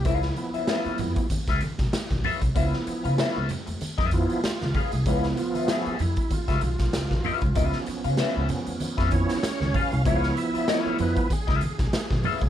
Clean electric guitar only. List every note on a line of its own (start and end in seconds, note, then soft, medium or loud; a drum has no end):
0.05 0.26 C#4 medium
0.05 0.27 F4 medium
0.05 0.27 B4 loud
0.05 0.27 F5 medium
0.37 muted clean electric guitar stroke soft
0.54 0.67 C#4 medium
0.54 0.67 F4 medium
0.54 0.67 B4 medium
0.54 0.66 E5 medium
0.68 0.97 C#4 medium
0.68 0.97 F4 medium
0.68 0.98 B4 medium
0.68 0.98 E5 medium
0.99 muted clean electric guitar stroke soft
1.17 muted clean electric guitar stroke soft
1.31 muted clean electric guitar stroke soft
1.49 1.60 C#4 medium
1.49 1.61 F4 medium
1.49 1.61 B4 medium
1.49 1.62 E5 medium
1.61 muted clean electric guitar stroke soft
1.79 muted clean electric guitar stroke soft
1.94 muted clean electric guitar stroke soft
2.11 muted clean electric guitar stroke soft
2.24 2.44 C#4 medium
2.24 2.41 F4 medium
2.24 2.41 B4 medium
2.24 2.40 E5 medium
2.42 muted clean electric guitar stroke soft
2.55 2.75 C#4 medium
2.55 2.75 F4 medium
2.55 2.76 B4 medium
2.55 2.76 E5 medium
2.87 muted clean electric guitar stroke soft
3.04 3.17 C#4 soft
3.04 3.17 F4 medium
3.04 3.17 B4 medium
3.04 3.17 F5 medium
3.18 3.47 C#4 medium
3.18 3.48 F4 medium
3.18 3.48 B4 loud
3.18 3.48 E5 medium
3.50 muted clean electric guitar stroke soft
3.67 muted clean electric guitar stroke soft
3.81 muted clean electric guitar stroke soft
3.98 4.10 C#4 medium
3.98 4.11 F4 medium
3.98 4.11 B4 medium
3.98 4.12 E5 medium
4.29 muted clean electric guitar stroke soft
4.43 muted clean electric guitar stroke soft
4.75 4.91 C#4 medium
4.75 4.91 F4 medium
4.75 4.91 B4 medium
4.75 4.92 F5 medium
4.93 muted clean electric guitar stroke soft
5.06 5.26 C#4 medium
5.06 5.26 F4 medium
5.06 5.26 B4 medium
5.06 5.27 F5 medium
5.37 muted clean electric guitar stroke soft
5.55 5.68 C#4 soft
5.55 5.68 F4 medium
5.55 5.68 B4 medium
5.55 5.67 E5 medium
5.69 5.98 C#4 medium
5.69 5.98 F4 medium
5.69 5.99 B4 medium
5.69 5.99 E5 loud
6.00 muted clean electric guitar stroke soft
6.17 muted clean electric guitar stroke soft
6.30 muted clean electric guitar stroke soft
6.48 6.61 C#4 medium
6.48 6.61 F4 medium
6.48 6.61 B4 medium
6.48 6.62 E5 medium
6.62 muted clean electric guitar stroke soft
6.79 muted clean electric guitar stroke soft
6.92 muted clean electric guitar stroke soft
7.11 muted clean electric guitar stroke soft
7.25 7.46 C#4 medium
7.25 7.42 F4 medium
7.25 7.41 B4 medium
7.25 7.41 E5 medium
7.42 muted clean electric guitar stroke medium
7.55 7.77 C#4 medium
7.55 7.77 F4 medium
7.55 7.77 B4 medium
7.55 7.78 E5 medium
7.87 muted clean electric guitar stroke soft
8.04 8.17 C#4 soft
8.04 8.17 F4 medium
8.04 8.17 B4 medium
8.04 8.17 F5 medium
8.18 8.47 C#4 medium
8.18 8.48 F4 medium
8.18 8.48 B4 loud
8.18 8.48 E5 loud
8.49 muted clean electric guitar stroke soft
8.67 muted clean electric guitar stroke soft
8.81 muted clean electric guitar stroke soft
8.97 9.11 C#4 medium
8.97 9.11 F4 medium
8.97 9.11 B4 medium
8.97 9.12 E5 medium
9.12 muted clean electric guitar stroke soft
9.29 muted clean electric guitar stroke soft
9.44 muted clean electric guitar stroke soft
9.76 9.91 C#4 medium
9.76 9.91 F4 medium
9.76 9.91 B4 medium
9.76 9.92 F5 medium
9.93 muted clean electric guitar stroke medium
10.06 10.27 C#4 medium
10.06 10.27 F4 medium
10.06 10.28 B4 medium
10.06 10.28 F5 loud
10.37 muted clean electric guitar stroke soft
10.54 10.67 C#4 soft
10.54 10.66 F4 soft
10.54 10.67 B4 medium
10.54 10.66 E5 medium
10.68 10.80 C4 medium
10.68 10.80 E4 medium
10.68 10.80 A#4 loud
10.68 10.81 D#5 loud
10.80 10.97 C#4 medium
10.80 10.97 F4 medium
10.80 10.97 B4 loud
10.80 10.98 E5 loud
10.98 muted clean electric guitar stroke soft
11.16 muted clean electric guitar stroke soft
11.31 muted clean electric guitar stroke soft
11.47 11.62 C#4 medium
11.47 11.62 F4 medium
11.47 11.62 B4 medium
11.47 11.63 E5 medium
11.63 muted clean electric guitar stroke soft
11.79 muted clean electric guitar stroke soft
11.94 muted clean electric guitar stroke soft
12.12 muted clean electric guitar stroke soft
12.25 12.44 C#4 medium
12.25 12.43 F4 medium
12.25 12.42 B4 medium
12.25 12.42 E5 loud
12.43 muted clean electric guitar stroke medium